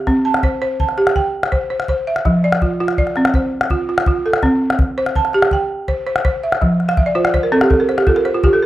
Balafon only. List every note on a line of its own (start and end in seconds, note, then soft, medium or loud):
0.07 0.43 C4 medium
0.25 0.79 A5 medium
0.44 0.61 C5 medium
0.62 0.98 C5 medium
0.80 1.34 A5 medium
0.98 1.34 G4 medium
1.16 1.70 G5 medium
1.52 1.69 C5 medium
1.70 1.88 C5 medium
1.89 2.25 C5 medium
2.07 2.43 E5 medium
2.25 2.61 F3 medium
2.44 2.97 D5 medium
2.62 2.79 F4 medium
2.80 3.16 F4 medium
2.98 3.52 D5 medium
3.17 3.52 C4 medium
3.35 3.89 C5 medium
3.71 3.88 F4 medium
3.89 4.06 F4 medium
4.07 4.43 F4 medium
4.26 4.61 A4 medium
4.43 4.79 C4 medium
4.98 5.34 C5 medium
5.16 5.70 A5 medium
5.34 5.70 G4 medium
5.53 6.07 G5 medium
5.88 6.05 C5 medium
6.07 6.24 C5 medium
6.25 6.61 C5 medium
6.43 6.80 E5 medium
6.61 6.98 F3 medium
6.89 7.05 F5 medium
6.98 7.14 E5 medium
7.06 7.23 D5 medium
7.15 7.52 F4 medium
7.15 7.32 C5 medium
7.24 7.42 D5 medium
7.34 7.51 C5 medium
7.43 7.60 A#4 medium
7.52 7.89 C4 medium
7.52 7.69 A4 medium
7.61 7.78 G4 medium
7.70 7.87 A4 medium
7.80 7.97 A#4 medium
7.89 8.06 C5 medium
7.98 8.15 G4 medium
8.07 8.33 F4 medium
8.07 8.24 A4 medium
8.16 8.33 A#4 medium
8.25 8.42 C5 medium
8.34 8.43 F4 medium
8.44 8.66 F4 medium
8.44 8.61 G4 medium
8.53 8.66 A4 medium
8.62 8.66 A#4 medium